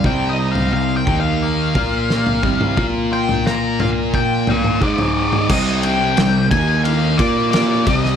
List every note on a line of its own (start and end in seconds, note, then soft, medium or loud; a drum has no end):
0.00 1.07 G3 medium
0.00 0.73 C4 medium
0.04 0.69 C2 medium
0.04 0.72 C3 medium
0.04 1.08 C3 medium
0.04 0.72 G3 medium
0.04 0.72 C4 loud
0.04 0.29 G5 medium
0.04 kick loud
0.04 floor tom medium
0.29 0.52 D#5 medium
0.40 1.08 D#4 medium
0.51 0.72 F5 medium
0.51 floor tom medium
0.73 1.05 C2 medium
0.73 1.00 C3 medium
0.73 1.01 G3 medium
0.73 1.08 C4 medium
0.73 0.94 F5 loud
0.97 1.20 G5 medium
1.07 1.72 D#2 loud
1.07 1.74 D#3 medium
1.07 1.76 D#3 medium
1.07 1.73 A#3 medium
1.07 1.75 D#4 medium
1.07 kick loud
1.07 floor tom medium
1.20 2.86 F5 loud
1.42 1.76 A#3 medium
1.74 2.40 A#2 medium
1.74 2.44 A#2 medium
1.74 2.42 A#3 medium
1.74 2.42 F4 loud
1.74 2.43 A#4 medium
1.74 kick loud
1.74 floor tom medium
2.10 2.44 A#3 medium
2.10 snare medium
2.26 floor tom medium
2.43 2.75 C2 medium
2.43 2.76 C3 medium
2.43 2.78 C3 medium
2.43 2.76 G3 loud
2.43 2.77 C4 loud
2.43 kick loud
2.43 mid tom medium
2.61 mid tom medium
2.77 4.78 A#2 medium
2.77 3.79 A#2 medium
2.77 4.82 A#3 medium
2.77 4.82 F4 loud
2.77 4.83 A#4 loud
2.77 kick loud
2.77 floor tom medium
3.12 4.82 F4 medium
3.12 3.44 G5 loud
3.29 floor tom medium
3.46 4.82 A#3 medium
3.46 3.82 A#5 loud
3.46 snare medium
3.80 4.47 A#2 medium
3.80 3.89 F5 loud
3.80 floor tom medium
3.80 mid tom medium
4.14 4.82 F3 medium
4.14 4.49 G5 loud
4.14 kick medium
4.47 4.82 A#2 medium
4.47 4.82 D5 medium
4.47 4.81 F5 medium
4.47 floor tom medium
4.64 mid tom medium
4.81 5.46 G#2 loud
4.81 5.50 G#2 medium
4.81 5.49 G#3 medium
4.81 5.49 D#4 loud
4.81 5.49 G#4 loud
4.81 5.53 D5 medium
4.81 5.46 D#5 medium
4.81 kick loud
4.98 floor tom medium
5.17 5.50 D#3 medium
5.33 mid tom medium
5.49 6.14 C2 medium
5.49 6.16 C3 medium
5.49 6.17 G3 medium
5.49 6.17 C4 loud
5.49 5.85 D#5 medium
5.49 kick loud
5.49 crash loud
5.83 6.48 G5 loud
5.83 ride medium
6.17 6.49 C2 medium
6.17 6.45 C3 medium
6.17 6.45 G3 medium
6.17 snare loud
6.17 ride loud
6.51 7.15 D#2 loud
6.51 7.18 D#3 loud
6.51 7.18 A#3 loud
6.51 7.19 D#4 loud
6.51 6.84 G#5 loud
6.51 kick loud
6.51 ride medium
6.84 7.20 F5 loud
6.84 ride loud
7.17 7.83 A#2 loud
7.17 7.86 A#3 medium
7.17 7.86 F4 loud
7.17 7.86 A#4 loud
7.17 7.50 D5 loud
7.17 kick loud
7.17 ride medium
7.51 7.87 D5 medium
7.51 snare loud
7.51 ride loud
7.87 8.16 C2 loud
7.87 8.16 C3 medium
7.87 8.16 G3 loud
7.87 8.16 C4 loud
7.87 7.98 D5 loud
7.87 kick loud
7.87 ride medium
7.98 8.16 D#5 loud
8.05 snare soft